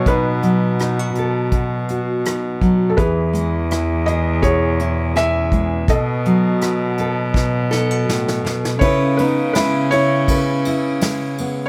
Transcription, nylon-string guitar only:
\new Staff \with { instrumentName = "Nylon-string guitar" } { \time 4/4 \key cis \minor \tempo 4 = 82 << { r4 dis'16 fis'16 a'4 fis'8 dis'4 | r4 e'8 gis'4 e'8 cis'4 | r4 fis'8 a'4 dis'16 fis'4~ fis'16 | r8 b4 e'8 b'8 e'4 b8 | } \\ { <b, fis>8 fis4. b,4. fis8 | e8 gis4. b,4. gis8 | b,8 fis4. b,4 a,8 b,8 | cis4 gis2 gis4 | } >> }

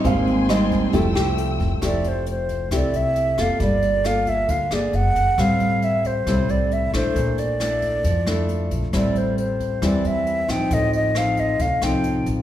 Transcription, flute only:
\new Staff \with { instrumentName = "Flute" } { \time 4/4 \key f \major \tempo 4 = 135 r1 | d''8 c''8 c''4 d''8 e''4 f''8 | d''4 f''8 e''8 f''8 d''8 ges''4 | f''4 e''8 c''4 d''8 e''8 c''8~ |
c''8 d''2. r8 | d''8 c''8 c''4 d''8 e''4 g''8 | ees''8 ees''8 f''8 ees''8 f''8 g''4 r8 | }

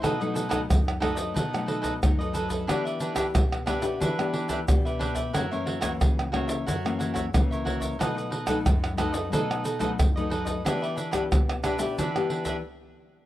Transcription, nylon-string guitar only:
\new Staff \with { instrumentName = "Nylon-string guitar" } { \time 4/4 \key b \phrygian \tempo 4 = 90 << { <fis a dis'>16 <fis a dis'>8 <fis a dis'>8. <fis a dis'>8 r16 <fis a dis'>8. <fis a dis'>4 | <b d' g'>8. <b d' g'>8. <b d' g'>16 <b d' g'>8 <b d' g'>8. <b d' g'>8. r16 | <e ais cis'>16 <e ais cis'>8 <e ais cis'>8. <e ais cis'>8 r16 <e ais cis'>8. <e ais cis'>4 | <fis a dis'>8 r16 <fis a dis'>8. <fis a dis'>8 <fis a dis'>8 r16 <fis a dis'>8 <fis a dis'>8. |
<b d' g'>8 r16 <b d' g'>8. <b d' g'>16 <b d' g'>8 <b d' g'>8. r4 | } \\ { b,4 fis,4 b,4 fis,4 | e4 b,4 e4 b,4 | fis,4 cis4 fis,4 cis4 | b,4 fis,4 b,4 fis,4 |
e4 b,4 e4 r4 | } >> }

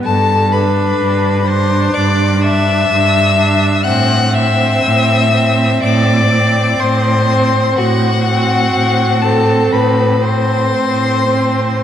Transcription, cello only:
\new Staff \with { instrumentName = "Cello" } { \clef bass \time 4/4 \key a \dorian \tempo 4 = 62 g,4 g,4 g,4 g,4 | a,4 a,4 a,4 a,4 | a,4 a,4 a,4 a,4 | }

